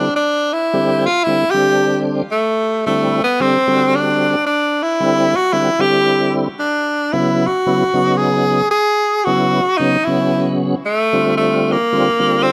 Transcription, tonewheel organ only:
0.73 1.08 D3 medium
0.73 1.08 G3 medium
0.73 1.08 C4 medium
0.73 1.08 G4 medium
1.27 1.44 D3 medium
1.27 1.44 G3 medium
1.27 1.45 C4 medium
1.27 1.44 E4 medium
1.54 2.22 D3 medium
1.54 2.22 G3 medium
1.54 2.23 C4 medium
1.54 2.22 D4 medium
2.86 3.21 D3 medium
2.86 3.21 G3 medium
2.86 3.21 C4 medium
2.86 3.21 E4 medium
3.40 3.57 D3 medium
3.40 3.58 G3 medium
3.40 3.58 C4 medium
3.40 3.58 G4 medium
3.67 4.36 D3 medium
3.67 4.36 G3 medium
3.67 4.36 C4 medium
3.67 4.36 F#4 medium
5.00 5.34 D3 medium
5.00 5.35 G3 medium
5.00 5.34 C4 medium
5.00 5.35 E4 medium
5.53 5.71 D3 medium
5.53 5.70 G3 medium
5.53 5.71 C4 medium
5.53 5.71 F#4 medium
5.79 6.48 D3 medium
5.79 6.48 G3 medium
5.79 6.48 C4 medium
5.79 6.48 E4 medium
7.13 7.48 C#3 medium
7.13 7.47 F#3 medium
7.13 7.47 B3 medium
7.13 7.47 E4 medium
7.66 7.84 C#3 medium
7.66 7.84 F#3 medium
7.66 7.84 B3 medium
7.66 7.84 E4 medium
7.93 8.62 C#3 medium
7.93 8.62 F#3 medium
7.93 8.62 B3 medium
7.93 8.62 D#4 medium
9.27 9.61 C#3 medium
9.27 9.61 F#3 medium
9.27 9.61 B3 medium
9.27 9.61 E4 medium
9.79 9.97 C#3 medium
9.79 9.97 F#3 medium
9.79 9.97 B3 medium
9.79 9.97 C#4 medium
10.07 10.75 C#3 medium
10.07 10.75 F#3 medium
10.07 10.75 B3 medium
10.07 10.75 C#4 medium
11.13 11.77 D3 medium
11.13 11.77 G3 medium
11.13 11.77 C4 medium
11.13 11.77 F4 medium
11.92 12.10 D3 medium
11.92 12.10 G3 medium
11.92 12.10 C4 medium
11.92 12.10 F4 medium
12.19 12.52 D3 medium
12.19 12.52 G3 medium
12.19 12.52 C4 medium
12.19 12.52 F4 medium

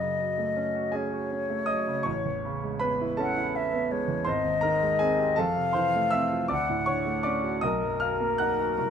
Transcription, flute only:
0.00 0.98 D#5 medium
0.96 2.94 C#5 medium
3.21 3.57 F#5 medium
3.56 3.93 E5 medium
3.91 4.30 C#5 medium
4.29 5.41 D#5 medium
5.39 6.50 F5 medium
6.52 7.65 F#5 medium
7.64 8.90 A#4 medium

